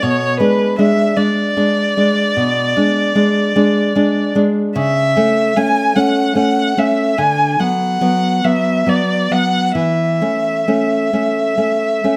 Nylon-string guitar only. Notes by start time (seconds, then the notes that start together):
0.03 B2
0.40 G#3 D4
0.79 G#3 D4
1.17 G#3 D4
1.57 G#3 D4
1.97 G#3 D4
2.37 B2
2.76 G#3 D4
3.15 G#3 D4
3.56 G#3 D4
3.95 G#3 D4
4.35 G#3 D4
4.76 C#3
5.17 A3 C#4
5.57 A3 C#4
5.96 A3 C#4
6.35 A3 C#4
6.77 A3 C#4
7.18 D3
7.59 F#3 B3
8.01 F#3 B3
8.44 F#3 B3
8.86 F#3 B3
9.31 F#3 B3
9.75 E3
10.21 A3 C#4
10.68 A3 C#4
11.13 A3 C#4
11.57 A3 C#4
12.04 A3 C#4